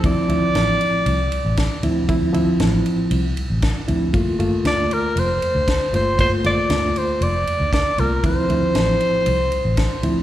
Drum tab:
RD |xxxxxxxx|xxxxxxxx|xxxxxxxx|xxxxxxxx|
SD |--o---o-|--o---o-|--o---o-|--o---o-|
BD |o-----o-|o-----o-|o-----o-|o-----o-|

RD |xxxxxxxx|
SD |--o---o-|
BD |o-----o-|